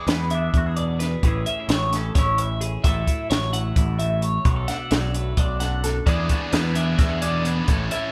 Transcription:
Already playing: clean electric guitar E3 G#4
0.07 picked electric bass E2, clean electric guitar B3 B4, snare, closed hi-hat
0.30 clean electric guitar E5, closed hi-hat
0.34 clean electric guitar D4
0.54 picked electric bass E2, clean electric guitar F#4, kick, closed hi-hat
0.66 clean electric guitar G#4
0.77 clean electric guitar B2 D5, closed hi-hat
0.99 clean electric guitar B4, snare, closed hi-hat
1.23 picked electric bass A1, clean electric guitar A2 E3 C#4 E4, kick, closed hi-hat
1.28 clean electric guitar G#4
1.46 clean electric guitar C#4 E5, closed hi-hat
1.60 clean electric guitar E4
1.69 picked electric bass A1, clean electric guitar E3 C#5, snare, closed hi-hat
1.92 clean electric guitar C#4 A4, snare, closed hi-hat
2.15 picked electric bass A1, clean electric guitar E4 C#5, kick, snare, closed hi-hat
2.38 clean electric guitar A2 E5, closed hi-hat
2.61 clean electric guitar G#4, closed hi-hat
2.84 picked electric bass A1, clean electric guitar A2 F#3 A3 E4 E5, kick, closed hi-hat
2.88 clean electric guitar A4
3.07 clean electric guitar E4, kick, closed hi-hat
3.30 picked electric bass A1, clean electric guitar F#3 C#5, snare, closed hi-hat
3.53 clean electric guitar A3 F#5, closed hi-hat
3.76 picked electric bass A1, clean electric guitar E4, kick, closed hi-hat
3.99 clean electric guitar A2 E5, closed hi-hat
4.22 clean electric guitar C#5, closed hi-hat
4.45 picked electric bass B1, clean electric guitar B2 F#4, kick, closed hi-hat
4.56 clean electric guitar A4
4.68 clean electric guitar D4 F#5, snare, closed hi-hat
4.91 picked electric bass B1, clean electric guitar F#3 D5, snare, closed hi-hat
5.14 clean electric guitar A3 B4, closed hi-hat
5.37 picked electric bass B1, clean electric guitar D4 D5, kick, closed hi-hat
5.60 clean electric guitar F#2 F#5, snare, closed hi-hat
5.84 clean electric guitar A4, snare, closed hi-hat
6.06 picked electric bass E2, overdriven electric guitar E3 B3 D4 G#4, clean electric guitar E3 B3 D4 G#4 D5, kick, closed hi-hat
6.29 overdriven electric guitar B3 D4 G#4, clean electric guitar F#4, kick, closed hi-hat
6.42 clean electric guitar G#4
6.51 picked electric bass E2, overdriven electric guitar E3 B3 D4 G#4, clean electric guitar B3 B4, snare, closed hi-hat
6.74 overdriven electric guitar B3 D4 G#4, clean electric guitar D4 E5, closed hi-hat
6.98 picked electric bass E2, clean electric guitar F#4, kick, snare, closed hi-hat
7.10 clean electric guitar G#4
7.21 clean electric guitar B2 D5, overdriven electric guitar B3 D4 G#4, closed hi-hat
7.43 overdriven electric guitar E3 B3 D4, clean electric guitar B4, closed hi-hat
7.47 overdriven electric guitar G#4
7.67 picked electric bass A1, clean electric guitar A2, overdriven electric guitar A3 C#4 E4 A4, kick, closed hi-hat
7.91 overdriven electric guitar C#4 E4 A4, clean electric guitar E4 E5, closed hi-hat

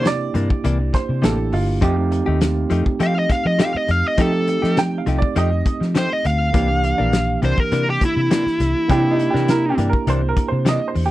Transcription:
Already playing: fingered electric bass C3, tine electric piano A#3 D4 E4 G4
0.03 upright piano C#5, snare, closed hi-hat
0.07 upright piano D5
0.34 fingered electric bass G2, clean electric guitar C3 E3 A#3 D4, closed hi-hat
0.50 muted clean electric guitar stroke, kick
0.64 fingered electric bass C2, clean electric guitar C3 E3 A#3 D4, closed hi-hat
0.79 muted clean electric guitar stroke
0.93 upright piano C5, muted clean electric guitar stroke, kick, snare, closed hi-hat
1.09 fingered electric bass C3
1.22 fingered electric bass A1, clean electric guitar C3 E3 A#3 D4, tine electric piano A#3 D4 E4 G4, upright piano A4, snare, closed hi-hat
1.38 muted clean electric guitar stroke
1.53 fingered electric bass G1, upright piano F4, muted clean electric guitar stroke, open hi-hat
1.81 fingered electric bass F2, clean electric guitar F3 A3 D#4 G4, tine electric piano A3 C4 D#4 G4, kick, closed hi-hat
1.97 muted clean electric guitar stroke
2.11 muted clean electric guitar stroke, closed hi-hat
2.26 fingered electric bass D#2, clean electric guitar A3 D#4 G4
2.41 snare, closed hi-hat
2.70 fingered electric bass F2, clean electric guitar F3 A3 D#4 G4, closed hi-hat
2.85 muted clean electric guitar stroke, muted fingered electric bass stroke, kick
3.00 clean electric guitar F3 A3 D#4 G4, fingered electric bass F3, lead electric guitar F5, closed hi-hat
3.15 muted clean electric guitar stroke
3.19 lead electric guitar D#5
3.29 lead electric guitar F5, muted clean electric guitar stroke, kick, snare, closed hi-hat
3.45 fingered electric bass F3, lead electric guitar D#5
3.59 clean electric guitar F3 A3 D#4 G4, lead electric guitar F5, snare, closed hi-hat
3.74 lead electric guitar D#5, muted clean electric guitar stroke, muted fingered electric bass stroke
3.88 fingered electric bass F2, lead electric guitar F5, muted clean electric guitar stroke, closed hi-hat
4.08 lead electric guitar D#5
4.17 clean electric guitar F3 A3 D#4 G4, fingered electric bass F3, tine electric piano A3 C4 D#4 G4, kick, closed hi-hat
4.22 lead electric guitar A4
4.34 muted clean electric guitar stroke
4.47 muted clean electric guitar stroke, closed hi-hat
4.62 fingered electric bass F3, clean electric guitar A3 D#4 G4, snare
4.77 upright piano G5, snare, closed hi-hat
4.98 upright piano F5
5.06 fingered electric bass C2, clean electric guitar F3 A3 D#4 G4, closed hi-hat
5.18 upright piano D5, muted clean electric guitar stroke, kick
5.36 fingered electric bass F2, clean electric guitar F3 A3 D#4 G4, upright piano D#5, closed hi-hat
5.51 muted clean electric guitar stroke
5.66 muted clean electric guitar stroke, kick, closed hi-hat
5.81 fingered electric bass F3, snare
5.95 clean electric guitar F3 A3 D#4 G4, lead electric guitar C5, snare, closed hi-hat
6.10 lead electric guitar D#5, muted clean electric guitar stroke
6.24 fingered electric bass D2, lead electric guitar F5, muted clean electric guitar stroke, closed hi-hat
6.52 fingered electric bass C2, clean electric guitar C3 E3 A#3 D4, tine electric piano E3 A#3 D4 G4, kick, closed hi-hat
6.70 muted clean electric guitar stroke
6.84 muted clean electric guitar stroke, closed hi-hat
6.98 fingered electric bass A#1, clean electric guitar E3 A#3 D4
7.13 snare, closed hi-hat
7.42 fingered electric bass C2, clean electric guitar C3 E3 A#3 D4, lead electric guitar C5, closed hi-hat
7.58 lead electric guitar A#4, muted clean electric guitar stroke, kick
7.72 clean electric guitar C3 E3 A#3 D4, fingered electric bass C3, closed hi-hat
7.87 lead electric guitar G4, muted clean electric guitar stroke
8.01 lead electric guitar E4, muted clean electric guitar stroke, kick, closed hi-hat
8.17 fingered electric bass C3
8.30 clean electric guitar C3 E3 A#3 D4, snare, closed hi-hat
8.46 muted clean electric guitar stroke, muted fingered electric bass stroke, snare
8.60 fingered electric bass C2, muted clean electric guitar stroke, snare, closed hi-hat
8.88 fingered electric bass C3, clean electric guitar C3 E3 A#3 D4, tine electric piano A#3 D4 E4 G4, upright piano G4, kick, closed hi-hat
9.05 muted clean electric guitar stroke
9.11 upright piano D#4
9.19 muted clean electric guitar stroke, closed hi-hat
9.30 clean electric guitar D4, upright piano G4
9.34 fingered electric bass C3, clean electric guitar E3 A#3, snare
9.48 upright piano A#4, muted clean electric guitar stroke, snare, closed hi-hat
9.70 upright piano G4
9.78 fingered electric bass G2, clean electric guitar C3 E3 A#3 D4, closed hi-hat
9.89 upright piano A#4, muted clean electric guitar stroke, kick
10.07 fingered electric bass C2, clean electric guitar C3 E3 A#3 D4, upright piano C5, closed hi-hat
10.23 muted clean electric guitar stroke
10.29 upright piano A#4
10.36 muted clean electric guitar stroke, kick, closed hi-hat
10.48 fingered electric bass C3, upright piano C5
10.65 clean electric guitar C3 E3 A#3 D4, upright piano D#5, snare, closed hi-hat
10.81 muted clean electric guitar stroke
10.88 upright piano C5
10.95 fingered electric bass E2, muted clean electric guitar stroke, open hi-hat
11.06 upright piano G4

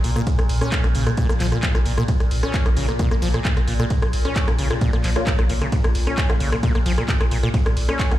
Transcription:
Already playing: synth drone A#2
0.04 sub bass A#1, acid bass A#2, open hi-hat, ride
0.16 acid bass A#2, cross-stick, closed hi-hat, ride
0.27 acid bass A#2, kick, closed hi-hat, ride
0.39 sub bass A#1, cross-stick, closed hi-hat, ride
0.49 sub bass A#1, open hi-hat, ride
0.61 acid bass C#4, cross-stick, closed hi-hat, ride
0.72 kick, clap, closed hi-hat, ride
0.84 sub bass A#1, acid bass A#2, cross-stick, closed hi-hat, ride
0.95 sub bass A#1, acid bass C#3, open hi-hat, ride
1.07 acid bass A#2, cross-stick, closed hi-hat, ride
1.17 acid bass A#2, kick, closed hi-hat, ride
1.29 sub bass A#1, acid bass A#3, cross-stick, closed hi-hat, ride
1.40 sub bass A#1, acid bass F3, clap, open hi-hat, ride
1.52 acid bass A#2, cross-stick, closed hi-hat, ride
1.63 acid bass A#2, kick, clap, closed hi-hat, ride
1.75 sub bass A#1, acid bass A#2, cross-stick, closed hi-hat, ride
1.86 sub bass A#1, acid bass A#2, open hi-hat, ride
1.98 acid bass A#2, cross-stick, ride
2.08 acid bass A#2, kick, closed hi-hat, ride
2.20 sub bass A#1, cross-stick, closed hi-hat, ride
2.31 sub bass A#1, open hi-hat, ride
2.43 acid bass C#4, cross-stick, closed hi-hat, ride
2.54 kick, clap, closed hi-hat, ride
2.66 sub bass A#1, acid bass A#2, cross-stick, closed hi-hat, ride
2.77 sub bass A#1, acid bass C#3, open hi-hat, ride
2.89 acid bass A#2, cross-stick, ride
2.99 acid bass A#2, kick, closed hi-hat, ride
3.11 sub bass A#1, acid bass A#3, cross-stick, closed hi-hat, ride
3.22 sub bass A#1, acid bass F3, open hi-hat, ride
3.34 acid bass A#2, cross-stick, closed hi-hat, ride
3.45 acid bass A#2, kick, clap, closed hi-hat, ride
3.57 sub bass A#1, acid bass A#2, cross-stick, closed hi-hat, ride
3.67 sub bass A#1, acid bass A#2, open hi-hat, ride
3.79 acid bass A#2, cross-stick, closed hi-hat, ride
3.90 acid bass A#2, kick, closed hi-hat, ride
4.02 sub bass A#1, cross-stick, closed hi-hat, ride
4.13 sub bass A#1, open hi-hat, ride
4.25 acid bass C#4, cross-stick, closed hi-hat, ride
4.36 kick, clap, closed hi-hat, ride
4.48 sub bass A#1, acid bass A#2, cross-stick, closed hi-hat, ride
4.59 sub bass A#1, acid bass C#3, open hi-hat, ride
4.71 acid bass A#2, cross-stick, closed hi-hat, ride
4.81 acid bass A#2, kick, closed hi-hat, ride
4.93 sub bass A#1, acid bass A#3, cross-stick, closed hi-hat, ride
5.04 sub bass A#1, acid bass F3, clap, open hi-hat, ride
5.16 synth stab A#3 C#4 F4, cross-stick, closed hi-hat, ride
5.27 acid bass A#1, kick, clap, closed hi-hat, ride
5.39 sub bass A#1, acid bass A#2, cross-stick, closed hi-hat, ride
5.49 sub bass A#1, acid bass A#2, open hi-hat, ride
5.61 acid bass C#3, cross-stick, closed hi-hat, ride
5.72 acid bass A#2, kick, closed hi-hat, ride
5.84 sub bass A#1, cross-stick, closed hi-hat, ride
5.95 sub bass A#1, open hi-hat, ride
6.07 acid bass C#4, cross-stick, closed hi-hat, ride
6.18 kick, clap, closed hi-hat, ride
6.30 sub bass A#1, acid bass A#2, cross-stick, closed hi-hat, ride
6.40 sub bass A#1, acid bass C#3, open hi-hat, ride
6.52 acid bass A#2, cross-stick, closed hi-hat, ride
6.63 acid bass A#2, kick, closed hi-hat, ride
6.75 sub bass A#1, acid bass A#3, cross-stick, closed hi-hat, ride
6.86 sub bass A#1, acid bass F3, open hi-hat, ride
6.98 acid bass A#2, cross-stick, closed hi-hat, ride
7.09 acid bass A#2, kick, clap, closed hi-hat, ride
7.21 sub bass A#1, acid bass A#2, cross-stick, closed hi-hat, ride
7.31 sub bass A#1, acid bass A#2, open hi-hat, ride
7.43 acid bass A#2, cross-stick, ride
7.54 acid bass A#2, kick, closed hi-hat, ride
7.66 sub bass A#1, cross-stick, closed hi-hat, ride
7.77 sub bass A#1, open hi-hat, ride
7.89 acid bass C#4, cross-stick, closed hi-hat, ride
7.99 kick, clap, closed hi-hat, ride
8.11 sub bass A#1, acid bass A#2, cross-stick, closed hi-hat, ride

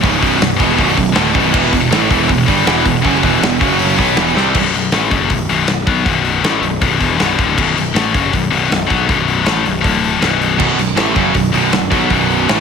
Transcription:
0.01 picked electric bass C#1, distorted electric guitar C#2 G#2 C#3, kick, open hi-hat
0.19 picked electric bass B0, distorted electric guitar B1 F#2 B2, kick
0.23 open hi-hat
0.38 picked electric bass B0, distorted electric guitar B1 F#2, snare, open hi-hat
0.56 picked electric bass E1, distorted electric guitar E2 B2 E3, kick, open hi-hat
0.75 picked electric bass B0, distorted electric guitar B1 F#2 B2, kick, open hi-hat
0.94 picked electric bass B0, distorted electric guitar B1 F#2, kick
0.98 open hi-hat
1.12 picked electric bass D1, distorted electric guitar D2 A2 D3, snare, open hi-hat
1.26 snare
1.33 picked electric bass B0, distorted electric guitar B1 F#2 B2, kick, open hi-hat
1.51 picked electric bass E1, distorted electric guitar E2 B2 E3, kick, crash
1.71 picked electric bass E1, distorted electric guitar E2 B2, kick, open hi-hat
1.91 picked electric bass A1, distorted electric guitar A2 E3 A3, snare, open hi-hat
2.10 picked electric bass E1, distorted electric guitar E2 B2 E3, kick, open hi-hat
2.27 picked electric bass E1, distorted electric guitar E2 B2, kick, open hi-hat
2.46 picked electric bass G1, distorted electric guitar G2 D3 G3, kick, open hi-hat
2.65 picked electric bass E1, distorted electric guitar E2 B2 E3, snare
2.84 picked electric bass E1, distorted electric guitar E2 B2, kick, open hi-hat
3.02 picked electric bass F#1, distorted electric guitar F#2 C#3 F#3, kick, open hi-hat
3.22 picked electric bass E1, distorted electric guitar E2 B2 E3, kick, open hi-hat
3.41 picked electric bass E1, distorted electric guitar E2 B2, snare, open hi-hat
3.59 picked electric bass F#1, distorted electric guitar F#2 C#3 F#3, kick, open hi-hat
3.79 open hi-hat
3.96 picked electric bass B1, distorted electric guitar B2 F#3 B3, kick, open hi-hat
4.16 picked electric bass E1, distorted electric guitar E2 B2 E3, snare, open hi-hat
4.35 picked electric bass C2, distorted electric guitar C3 G3 C4, snare
4.54 picked electric bass B0, distorted electric guitar B1 F#2 B2, kick, crash
4.73 picked electric bass B0, distorted electric guitar B1 F#2, open hi-hat
4.92 picked electric bass A1, distorted electric guitar A2 E3 A3, snare, open hi-hat
5.10 picked electric bass F#1, distorted electric guitar F#2 C#3 F#3, kick, open hi-hat
5.30 picked electric bass B0, distorted electric guitar B1 F#2, kick, open hi-hat
5.49 picked electric bass B0, distorted electric guitar B1 F#2 B2, open hi-hat
5.67 picked electric bass B0, distorted electric guitar B1 F#2, snare, open hi-hat
5.87 picked electric bass B1, distorted electric guitar B2 F#3 B3, kick, open hi-hat
6.05 picked electric bass B0, distorted electric guitar B1 F#2 B2, kick, open hi-hat
6.25 open hi-hat
6.43 picked electric bass A1, distorted electric guitar A2 E3 A3, snare, open hi-hat
6.62 picked electric bass B0, distorted electric guitar B1 F#2, open hi-hat
6.81 picked electric bass B0, distorted electric guitar B1 F#2 B2, kick, open hi-hat
7.00 picked electric bass E1, distorted electric guitar E2 B2 E3, kick, open hi-hat
7.17 picked electric bass B0, distorted electric guitar B1 F#2 B2, snare, open hi-hat
7.37 picked electric bass D1, distorted electric guitar D2 A2 D3, kick, open hi-hat
7.57 picked electric bass B0, distorted electric guitar B1 F#2 B2, kick, crash
7.76 picked electric bass B0, distorted electric guitar B1 F#2, open hi-hat
7.94 picked electric bass A1, distorted electric guitar A2 E3 A3, snare, open hi-hat
8.13 picked electric bass F#1, distorted electric guitar F#2 C#3 F#3, kick, open hi-hat
8.32 picked electric bass B0, distorted electric guitar B1 F#2, kick, open hi-hat
8.50 picked electric bass B0, distorted electric guitar B1 F#2 B2, open hi-hat
8.69 picked electric bass B0, distorted electric guitar B1 F#2, snare, open hi-hat
8.87 picked electric bass B1, distorted electric guitar B2 F#3 B3, kick
8.91 open hi-hat
9.07 picked electric bass B0, distorted electric guitar B1 F#2 B2, kick, open hi-hat
9.28 open hi-hat
9.43 picked electric bass A1, distorted electric guitar A2 E3 A3, snare, open hi-hat
9.64 picked electric bass B0, distorted electric guitar B1 F#2, open hi-hat
9.81 picked electric bass D1, distorted electric guitar D2 A2 D3, kick, open hi-hat
10.04 open hi-hat
10.20 picked electric bass B0, distorted electric guitar B1 F#2 B2, snare, open hi-hat
10.42 open hi-hat
10.58 picked electric bass B0, distorted electric guitar B1 F#2 B2, kick, crash
10.77 picked electric bass B0, distorted electric guitar B1 F#2, open hi-hat
10.96 picked electric bass A1, distorted electric guitar A2 E3 A3, snare, open hi-hat
11.14 picked electric bass F#1, distorted electric guitar F#2 C#3 F#3, kick, open hi-hat
11.34 picked electric bass B0, distorted electric guitar B1 F#2, kick, open hi-hat
11.52 picked electric bass B0, distorted electric guitar B1 F#2 B2, open hi-hat
11.72 picked electric bass B0, distorted electric guitar B1 F#2, snare, open hi-hat
11.90 picked electric bass B1, distorted electric guitar B2 F#3 B3, kick, open hi-hat
12.10 picked electric bass B0, distorted electric guitar B1 F#2 B2, kick, open hi-hat
12.30 open hi-hat
12.48 picked electric bass A1, distorted electric guitar A2 E3 A3, snare, open hi-hat

